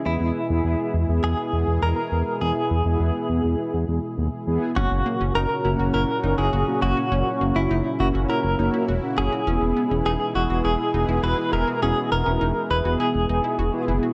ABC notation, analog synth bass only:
X:1
M:4/4
L:1/16
Q:1/4=102
K:F#mix
V:1 name="Analog synth bass" clef=bass
E,, E,, z E,, E,, z E,, E,, E,, z E,, E,, E,, z E,, z | E,, z E,, E,, E,, z E,, E,, z E,, E,, z D,, z E,, z | F,,, F,,, z F,,, F,,, z F,,, F,,, F,,, z F,,, F,,, F,,, z F,,, z | F,,, z F,,, F,,, F,,, z F,,, F,,, z F,,, F,,, z E,,, z F,,, z |
E,,, E,,, z E,,, E,,, z E,,, E,,, E,,, z E,,, E,,, E,,, z E,,, z | E,,, z E,,, E,,, E,,, z E,,, E,,, z E,,, E,,, z E,,, z F,,, z |]